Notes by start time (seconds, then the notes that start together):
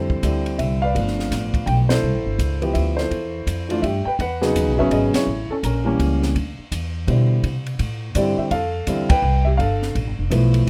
Already playing: F2 D3 G3 C4 E4 A4 C5
0.10 kick
0.23 D2 D3 G3 C4 E4, kick, hi-hat pedal, ride
0.46 ride
0.58 C2 E5, kick, ride
0.82 B4 D5 F5
0.95 G1 F3 A3 B3 D4, kick, ride
1.08 snare
1.20 snare
1.31 A1, kick, snare, hi-hat pedal, ride
1.54 kick, ride
1.66 B1 G5, kick, ride
1.89 E4 A4 C5, snare, ride
2.02 C2
2.14 A1
2.26 G1
2.38 C#2, kick, hi-hat pedal, ride
2.62 F3 B3 E4 G4, ride
2.73 D2 E5, kick, ride
2.97 E4 A4 C5, snare
3.11 E2, kick, ride
3.47 F2, kick, hi-hat pedal, ride
3.69 E3 A3 D4 F4, ride
3.82 G2 G4 E5, kick, ride
4.05 B4 G5, muted upright bass stroke
4.19 E2 B4 F#5, kick, ride
4.41 C#3 F#3 B3 D#4, snare
4.55 D#2, kick, hi-hat pedal, ride
4.67 B1
4.78 G#1 C#3 F#3 B3 C#4 G#4 E5
4.91 G#1 G#4 D#5, kick, ride
5.13 E4 C#5, muted upright bass stroke, snare, ride
5.27 A1
5.49 C#4 A4, muted upright bass stroke
5.63 A#1 C#4 A#4, kick, hi-hat pedal, ride
5.84 E3 G3 A#3 C#4
5.99 C#2, kick, ride
6.23 snare
6.35 D2, kick, ride
6.59 muted upright bass stroke
6.71 E2, kick, hi-hat pedal, ride
7.07 B2 D3 G3 E4 C5, kick, ride
7.43 C3, kick, ride
7.66 ride
7.79 A2, kick, ride
8.15 G2 D3 G3 C4 E4 G4 D5, kick, hi-hat pedal, ride
8.38 G4 E5, muted upright bass stroke
8.51 F2 A4 F5, kick, ride
8.87 E2 D3 G3 C4 E4, kick, hi-hat pedal, ride
9.09 B4 G5, muted upright bass stroke, kick, ride
9.22 C2
9.45 G4 E5
9.57 G1 A4 F5, kick, ride
9.82 snare
9.95 A1, kick, ride
10.07 G1
10.19 F1
10.30 B1 F3 A3 B3 E4, kick, hi-hat pedal, ride
10.54 ride